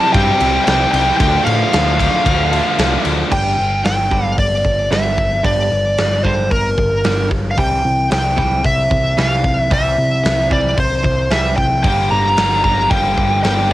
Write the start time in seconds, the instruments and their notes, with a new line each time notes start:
Already playing: distorted electric guitar C3 G3 C4 E4 G4, overdriven electric guitar C3 G3 C4 E4 G4, lead electric guitar A5
0.13 picked electric bass G2, overdriven electric guitar C3 G3 C4 E4, lead electric guitar G5, kick, ride
0.17 overdriven electric guitar G4
0.40 picked electric bass C2, distorted electric guitar G3, overdriven electric guitar C4 E4 G4, ride
0.64 picked electric bass C2, distorted electric guitar C3, overdriven electric guitar G3, lead electric guitar G5, snare, ride
0.68 overdriven electric guitar C4 E4 G4
0.92 picked electric bass C2, overdriven electric guitar G4, lead electric guitar G5, ride
0.96 overdriven electric guitar C4 E4
1.17 picked electric bass D2, overdriven electric guitar D3, lead electric guitar G5, kick, ride
1.22 overdriven electric guitar F3 A3 D4
1.45 picked electric bass A2, lead electric guitar F5, ride
1.73 picked electric bass D2, distorted electric guitar D3 F3 A3 D4, snare, ride
1.99 overdriven electric guitar F3 A3 D4, kick, ride
2.26 picked electric bass D2, overdriven electric guitar D3 F3 A3 D4, kick, ride
2.52 overdriven electric guitar F3 A3 D4, ride
2.78 picked electric bass C2, overdriven electric guitar D3 F3 A3 D4, snare, ride
3.05 picked electric bass D2, overdriven electric guitar F3 A3 D4, ride
3.30 picked electric bass G1, clean electric guitar G2 D3 G3, lead electric guitar G5, kick, crash
3.59 picked electric bass G1
3.84 picked electric bass G1, clean electric guitar G2 D3, lead electric guitar G5, snare, open hi-hat
4.11 picked electric bass G1, clean electric guitar G2 D3 G3, kick
4.38 picked electric bass G1, clean electric guitar G2 D3, lead electric guitar D5, kick, open hi-hat
4.65 picked electric bass G1, clean electric guitar G2 D3, kick
4.91 picked electric bass G1, clean electric guitar G2 D3 G3, lead electric guitar E5, snare, open hi-hat
5.17 clean electric guitar G2 D3, kick
5.43 picked electric bass G1, clean electric guitar G2 D3 G3, lead electric guitar D5, kick, open hi-hat
5.70 picked electric bass G1, clean electric guitar G2 D3
5.98 picked electric bass G1, clean electric guitar G2 D3, snare, open hi-hat
6.23 clean electric guitar G2 D3 G3, lead electric guitar C5, kick
6.51 picked electric bass G1, clean electric guitar G2 D3, lead electric guitar A#4, kick, open hi-hat
6.78 picked electric bass G1, clean electric guitar G2 D3, kick
7.04 picked electric bass G1, clean electric guitar G2 D3 G3, snare, open hi-hat
7.31 picked electric bass G1, clean electric guitar G2 D3, kick
7.51 lead electric guitar F5
7.58 picked electric bass C2, clean electric guitar C3 E3 G3, lead electric guitar G5, kick, open hi-hat
7.84 picked electric bass C2, clean electric guitar C3 E3
8.10 picked electric bass C2, clean electric guitar C3 E3, lead electric guitar G5, snare, open hi-hat
8.37 picked electric bass C2, clean electric guitar C3 E3 G3, kick
8.63 picked electric bass C2, clean electric guitar C3, lead electric guitar E5, kick, open hi-hat
8.90 picked electric bass C2, clean electric guitar C3 E3, kick
9.17 picked electric bass C2, clean electric guitar C3 E3 G3, lead electric guitar F5, snare, open hi-hat
9.44 clean electric guitar C3 E3, kick
9.60 lead electric guitar E5
9.71 picked electric bass C2, clean electric guitar C3 E3 G3, lead electric guitar E5, kick, open hi-hat
9.97 picked electric bass C2, clean electric guitar C3
10.24 picked electric bass C2, clean electric guitar C3 E3, snare, open hi-hat
10.50 clean electric guitar C3 E3 G3, lead electric guitar D5, kick
10.77 picked electric bass C2, clean electric guitar C3 E3, lead electric guitar C5, kick, open hi-hat
11.03 picked electric bass C2, clean electric guitar C3 E3, kick
11.30 picked electric bass C2, clean electric guitar C3 E3 G3, lead electric guitar E5, snare, open hi-hat
11.56 picked electric bass C2, clean electric guitar C3 E3, lead electric guitar G5, kick
11.83 picked electric bass G1, overdriven electric guitar G2 D3 G3 A#3 D4, lead electric guitar G5, kick, open hi-hat
12.10 picked electric bass G1, overdriven electric guitar G3 A#3 D4, lead electric guitar A#5
12.36 picked electric bass G1, overdriven electric guitar D3 G3 A#3 D4, snare, open hi-hat
12.63 picked electric bass G1, overdriven electric guitar G3 A#3 D4, lead electric guitar A#5, kick
12.89 picked electric bass G1, overdriven electric guitar G2 D3 G3 A#3 D4, lead electric guitar G5, kick, open hi-hat
13.17 picked electric bass G1, distorted electric guitar G3 A#3 D4, kick
13.44 picked electric bass G1, overdriven electric guitar D3 G3 A#3 D4, lead electric guitar G5, snare, open hi-hat
13.69 distorted electric guitar D4